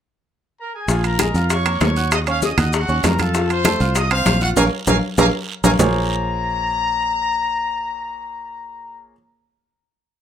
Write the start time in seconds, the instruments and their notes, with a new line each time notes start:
0.60 trumpet section A#4 A#5
0.75 trumpet section G#4 G#5
0.88 fingered electric bass A#1, grand piano F3 F4 F5, high bongo, long guiro, maracas
1.04 trumpet section A#4 A#5, high conga, high timbale, maracas
1.19 grand piano G#3 G#4 G#5, high bongo, high conga, high timbale, short guiro, maracas
1.34 fingered electric bass F2, grand piano F4 F5 F6, high conga, short guiro, maracas
1.50 trumpet section C#5 C#6, high bongo, high conga, high timbale, long guiro, maracas
1.66 grand piano A#3 A#4 A#5, high conga, high timbale, maracas
1.81 fingered electric bass D#2, trumpet section C#5 C#6, high bongo, low bongo, high conga, high timbale, low timbale, short guiro, maracas
1.96 grand piano F#4 F#5 F#6, short guiro, maracas
2.12 trumpet section D#5 D#6, high bongo, high conga, high timbale, long guiro, maracas
2.27 grand piano C#4 C#5 C#6, trumpet section F5, high conga, high timbale, maracas
2.42 trumpet section D#5 D#6, high bongo, high conga, short guiro, maracas
2.58 fingered electric bass D#2, grand piano F#4 F#5 F#6, high bongo, high conga, low conga, high timbale, short guiro, maracas
2.73 trumpet section F#4 F#5, high bongo, long guiro, maracas
2.88 fingered electric bass D#2, grand piano C#4 C#5 C#6, high bongo, high conga, maracas
3.04 fingered electric bass F2, trumpet section A#4 A#5, high bongo, low bongo, high conga, high timbale, low timbale, short guiro, maracas
3.19 grand piano F4 F5 F6, trumpet section A4 A5, high bongo, high conga, high timbale, short guiro, maracas
3.34 grand piano F3 F4 F5, high bongo, high conga, long guiro, maracas
3.50 trumpet section C5 C6, high conga, high timbale, maracas
3.65 grand piano A3 A4 A5, high bongo, high conga, high timbale, short guiro, maracas
3.80 fingered electric bass C2, grand piano F4 F5 F6, high conga, short guiro, maracas
3.95 trumpet section D#5 D#6, high bongo, high conga, high timbale, long guiro, maracas
4.11 grand piano C4 C5 C6, trumpet section F5, high conga, high timbale, maracas
4.26 fingered electric bass A#1, high bongo, low bongo, high conga, high timbale, short guiro, maracas
4.41 grand piano F4 F5 F6, trumpet section F#4 F#5, high conga, short guiro, maracas
4.56 fingered electric bass A#1, grand piano A#4 C#5 F5, trumpet section F5 G#5 A#5, high bongo, high conga, high timbale, long guiro, maracas
4.87 fingered electric bass A#1, grand piano A#4 C#5 F5, trumpet section F5 G#5 A#5, high bongo, high conga, high timbale, long guiro, maracas
5.18 fingered electric bass A#1, grand piano A#4 C#5 F5, trumpet section F5 G#5 A#5, high bongo, high conga, high timbale, long guiro, maracas
5.64 fingered electric bass A#1, grand piano A#4 C#5 F5, trumpet section F5 G#5 A#5, high bongo, high conga, high timbale, long guiro, maracas
5.79 fingered electric bass A#1, grand piano A#3 F4 G#4 A#4 C5 C#5, trumpet section A#5, low bongo, low conga, low timbale, long guiro, maracas